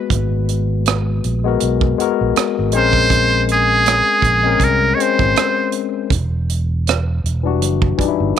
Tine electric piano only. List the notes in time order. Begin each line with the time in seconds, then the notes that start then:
Already playing: G#3 A#3 B3 F#4 B4
1.44 G#3 B3 F#4 A#4
1.98 G#3 B3 F#4 A#4
2.73 G#3 C4 C#4 A#4
4.43 G#3 C4 C#4 A#4
4.97 G#3 C4 C#4 C5
7.43 E3 G3 D4 F#4
7.98 E3 G3 D4 D#4
8.08 E4